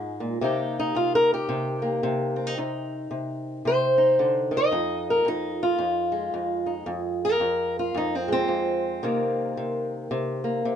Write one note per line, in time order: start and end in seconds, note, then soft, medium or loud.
0.00 0.21 G#2 medium
0.00 0.41 D#3 medium
0.00 0.42 G#3 soft
0.00 0.43 D#4 medium
0.20 0.41 A#2 medium
0.41 0.94 C3 medium
0.41 4.50 D#3 medium
0.41 1.81 A#3 soft
0.41 0.79 D#4 medium
0.41 0.96 G4 medium
0.80 0.97 D#4 medium
0.95 1.48 C3 medium
0.95 1.14 F4 medium
1.15 1.32 A#4 medium
1.34 2.94 G4 medium
1.49 2.02 C3 medium
1.82 2.54 A#3 soft
2.03 2.54 C3 medium
2.36 2.47 C4 soft
2.47 2.57 D#4 soft
2.58 3.09 C3 medium
2.58 3.97 D#4 soft
3.11 3.64 C3 medium
3.65 4.70 C3 medium
3.65 4.38 C5 medium
3.98 4.72 D#4 soft
4.19 4.51 D3 medium
4.51 4.72 D#3 medium
4.57 5.09 D#5 loud
4.72 5.24 F2 medium
4.72 5.28 D#4 medium
5.10 5.27 A#4 medium
5.25 5.78 F2 medium
5.25 5.63 D#4 medium
5.63 6.70 F4 medium
5.78 6.32 F2 medium
6.12 8.27 G#3 soft
6.34 6.85 F2 medium
6.66 6.89 D#4 soft
6.86 7.39 F2 medium
7.25 7.78 A#4 loud
7.40 7.93 F2 medium
7.79 7.96 F4 medium
7.94 8.47 F2 medium
7.94 8.15 D#4 medium
8.15 8.31 C4 medium
8.28 9.03 G#3 medium
8.32 9.94 C4 loud
8.48 9.00 F2 medium
9.03 9.57 C3 medium
9.03 10.76 D#3 medium
9.03 10.43 A#3 medium
9.57 10.10 C3 medium
10.11 10.64 C3 medium
10.44 10.76 A#3 soft
10.65 10.76 C3 medium